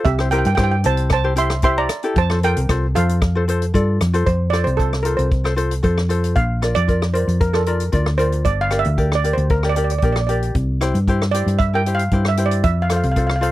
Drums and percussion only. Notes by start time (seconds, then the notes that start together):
0.05 kick, closed hi-hat
0.19 cross-stick
0.32 closed hi-hat
0.45 closed hi-hat
0.57 kick, cross-stick, closed hi-hat
0.84 closed hi-hat
0.97 closed hi-hat
1.10 kick, cross-stick, closed hi-hat
1.36 closed hi-hat
1.50 cross-stick, closed hi-hat
1.62 kick, closed hi-hat
1.89 cross-stick, closed hi-hat
2.03 closed hi-hat
2.16 kick, closed hi-hat
2.30 cross-stick
2.43 closed hi-hat
2.56 closed hi-hat
2.69 kick, cross-stick, closed hi-hat
2.96 closed hi-hat
3.09 closed hi-hat
3.22 kick, cross-stick, closed hi-hat
3.48 closed hi-hat
3.62 closed hi-hat
3.74 kick, closed hi-hat
4.01 cross-stick, closed hi-hat
4.14 closed hi-hat
4.27 kick, closed hi-hat
4.53 cross-stick, closed hi-hat
4.67 closed hi-hat
4.79 kick, closed hi-hat
4.93 cross-stick
5.05 closed hi-hat
5.19 closed hi-hat
5.32 kick, closed hi-hat
5.45 cross-stick
5.58 closed hi-hat
5.71 closed hi-hat
5.84 kick, closed hi-hat
5.98 cross-stick
6.10 closed hi-hat
6.24 closed hi-hat
6.36 kick, closed hi-hat
6.62 cross-stick, closed hi-hat
6.76 closed hi-hat
6.89 kick, closed hi-hat
7.02 cross-stick
7.15 closed hi-hat
7.28 closed hi-hat
7.41 kick, closed hi-hat
7.54 cross-stick
7.66 closed hi-hat
7.80 closed hi-hat
7.92 kick, closed hi-hat
8.06 cross-stick
8.19 closed hi-hat
8.32 closed hi-hat
8.45 kick, closed hi-hat
8.71 cross-stick, closed hi-hat
8.84 closed hi-hat
8.98 kick, closed hi-hat
9.12 cross-stick
9.24 closed hi-hat
9.38 closed hi-hat
9.50 kick, closed hi-hat
9.63 cross-stick
9.76 closed hi-hat
9.90 closed hi-hat
10.02 kick, closed hi-hat
10.16 cross-stick
10.29 closed hi-hat
10.42 closed hi-hat
10.55 kick, closed hi-hat
10.81 cross-stick, closed hi-hat
10.95 closed hi-hat
11.08 kick, closed hi-hat
11.22 cross-stick
11.34 closed hi-hat
11.47 closed hi-hat
11.60 kick, closed hi-hat
11.86 closed hi-hat
11.99 closed hi-hat
12.11 kick, closed hi-hat
12.25 cross-stick
12.37 closed hi-hat
12.51 closed hi-hat
12.64 kick, closed hi-hat
12.90 cross-stick, closed hi-hat
13.03 closed hi-hat
13.16 kick, closed hi-hat
13.30 cross-stick
13.43 closed hi-hat